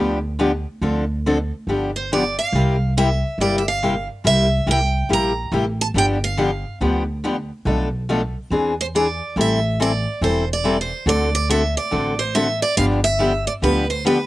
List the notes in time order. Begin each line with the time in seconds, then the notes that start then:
Already playing: D2 D3 F3 B3 D4 G4
0.39 D3 F3 B3 D4 G4
0.81 D2 D3 F3 C4 D4 A4
1.26 D3 F3 C4 D4 A4
1.67 G1 D3 F3 B3 D4 G4
1.96 C5
2.12 D3 F3 B3 D4 G4 D5
2.39 F5
2.52 C2 C3 G3 A#3 E4 G4
2.97 C3 G3 A#3 E4 G4 E5
3.38 G1 C3 G3 A#3 E4 G4 D5
3.58 E5
3.68 F5
3.83 C3 G3 A#3 E4 G4
4.24 C2 C3 G3 A#3 E4 G4 E5
4.67 C2 C3 G3 A#3 E4 G4
4.71 G5
5.09 A#1 C3 G3 A#3 E4 G4
5.13 A#5
5.52 A1 C3 G3 A#3 E4 G4
5.81 A5
5.94 G1 D3 F3 B3 D4 G4 G5
6.24 F5
6.37 D3 F3 B3 D4 G4
6.81 D2 D3 F3 B3 D4 G4
7.24 D3 F3 B3 D4 G4
7.65 B1 B2 F3 A3 D4 A4
8.09 B2 F3 A3 D4 A4
8.50 E2 E3 C4 D4 G#4
8.81 C5
8.95 E3 C4 D4 G#4 D5
9.36 A1 E3 G3 C4 E4 A4
9.41 E5
9.80 E3 G3 C4 E4 A4 D5
10.21 E1 E3 G3 C4 E4 A4 C5
10.53 D5
10.64 E3 G3 C4 E4 A4
10.81 C5
11.06 D2 D3 A3 C4 F#4 A4 D5
11.35 D5
11.49 D3 A3 C4 F#4 A4 E5
11.77 D5
11.91 A1 D3 A3 C4 F#4 A4
12.19 C5
12.35 D3 A3 C4 F#4 A4 E5
12.62 D5
12.77 G1 D3 F3 B3 D4 G4 F5
13.04 E5
13.19 D3 F3 B3 D4 G4
13.47 D5
13.62 D2 D3 F3 B3 D4 G4 B4
13.90 C5
14.05 D3 F3 B3 D4 G4 B4